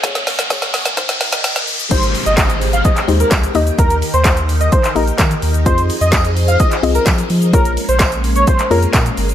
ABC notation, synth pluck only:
X:1
M:4/4
L:1/8
Q:1/4=128
K:Ab
V:1 name="Synth pluck"
[B,Ad] z [B,Ad]2 [B,Ec]3 z | [A,EGc]3 z2 [A,EGc]2 [B,EGe]- | [B,EGe]2 z3 [B,EGe]2 z | [CFAe]3 z2 [CFAe]2 z |
[B,FAd]3 z2 [B,FAd]2 z |]